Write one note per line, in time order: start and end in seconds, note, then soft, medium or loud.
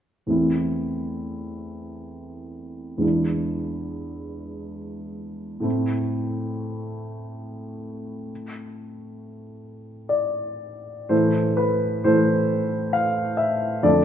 0.27 2.96 E2 soft
0.27 2.97 A3 soft
0.27 2.97 C4 soft
0.27 2.98 E4 soft
2.98 5.59 E2 soft
2.98 5.59 G#3 soft
2.98 5.60 D4 soft
3.02 5.61 E4 soft
5.60 11.05 A2 soft
5.60 11.05 A3 soft
5.60 11.06 C4 soft
5.60 11.06 E4 soft
10.09 11.10 D5 medium
11.09 12.01 A2 soft
11.09 12.01 E3 soft
11.09 12.01 A3 soft
11.09 12.01 A4 soft
11.09 11.57 C5 soft
11.57 12.04 B4 soft
12.04 13.80 A2 soft
12.04 13.80 E3 soft
12.04 13.80 A3 soft
12.04 13.80 A4 soft
12.04 12.94 C5 soft
12.93 13.39 F5 soft
13.37 13.83 E5 soft
13.83 14.05 F2 soft
13.83 14.05 D3 soft
13.83 14.05 A3 soft
13.83 14.05 A4 soft
13.83 14.05 D5 medium